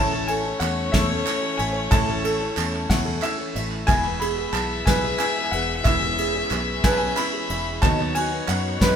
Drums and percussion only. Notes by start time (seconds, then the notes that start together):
0.12 clap
0.28 ride
0.61 clap, ride
0.94 kick, snare, ride
1.27 clap, ride
1.59 ride
1.92 kick, clap, ride
2.08 clap
2.25 ride
2.57 clap, ride
2.74 clap
2.90 kick, snare, ride
3.06 clap
3.22 clap, ride
3.56 ride
3.72 clap
3.88 kick, clap, ride
4.05 clap
4.21 ride
4.54 clap, ride
4.87 kick, snare, ride
5.19 clap, ride
5.53 ride
5.85 kick, clap, ride
6.02 clap
6.18 ride
6.51 clap, ride
6.84 kick, snare, ride
7.17 clap, ride
7.50 ride
7.83 kick, clap, ride
8.00 clap
8.15 ride
8.48 clap, ride
8.81 kick, snare, ride